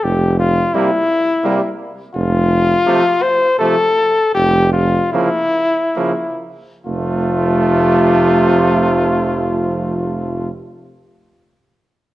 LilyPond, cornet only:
\new Staff \with { instrumentName = "Cornet" } { \time 3/4 \key f \major \tempo 4 = 72 g'8 f'8 e'4. r8 | f'4. c''8 a'4 | g'8 f'8 e'4. r8 | f'2.~ |
f'2. | }